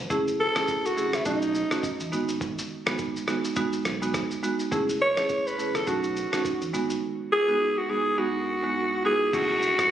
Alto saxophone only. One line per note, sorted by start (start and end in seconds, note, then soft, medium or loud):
0.40 0.87 A4 loud
0.86 1.16 F#4 loud
1.15 1.26 E4 medium
1.27 2.09 D#4 medium
5.02 5.49 C#5 loud
5.47 5.78 B4 loud
5.76 5.90 A4 medium
5.88 6.74 F#4 medium
7.33 7.80 G#4 loud
7.78 7.92 F#4 loud
7.90 8.20 G#4 loud
8.19 9.05 F#4 loud
9.05 9.36 G#4 loud
9.34 9.91 F#4 loud